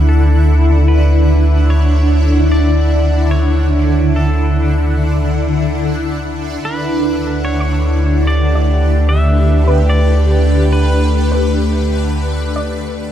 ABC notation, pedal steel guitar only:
X:1
M:4/4
L:1/8
Q:1/4=73
K:D
V:1 name="Pedal steel guitar"
A2 B2 c2 d2 | c2 A4 z2 | B2 c2 d2 e2 | d2 B4 z2 |]